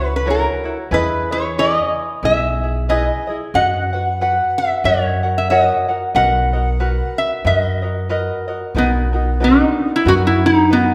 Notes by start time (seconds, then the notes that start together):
Already playing: C#2 C#5
0.00 E4 F#4 C#5
0.16 B4
0.26 E4 F#4 A#4 C#5
0.30 A#4
0.64 E4 F#4 C#5
0.91 E2 E4 G#4 B4 D#5
1.31 E4 G#4 C#5 D#5
1.58 E4 G#4 B4 D#5
2.23 B1 E4 G#4 B4 E5
2.63 E4 G#4
2.89 E4 G#4 B4 D#5
3.27 E4 G#4 D#5
3.54 F#2 F#4 B4 D#5 F#5
3.93 F#4 B4 F#5
4.21 F#4 B4 F#5
4.58 E5
4.84 F#2 F#4 A#4 C#5
4.88 F#5
5.23 F#4 A#4 F#5
5.38 E5
5.50 F#4 A#4 C#5 D#5 F#5
5.88 F#4 A#4 F#5
6.15 B1 F#4 A#4 B4 D#5 F#5
6.53 F#4 A#4 D#5
6.80 F#4 A#4 B4
7.18 E5
7.44 F#2 F#4 A#4 B4 D#5
7.82 F#4 A#4 D#5
8.09 F#4 A#4 B4 D#5
8.48 F#4 A#4 D#5
8.75 B1 B3 D#4 F#4 A#4 B4
9.13 D#4 F#4 A#4
9.40 D#4 F#4 A#4 B4
9.96 E4
10.05 F#2 D#4 F#4 A#4 B4
10.27 E4
10.46 D#4
10.70 B3 D#4 F#4 A#4 B4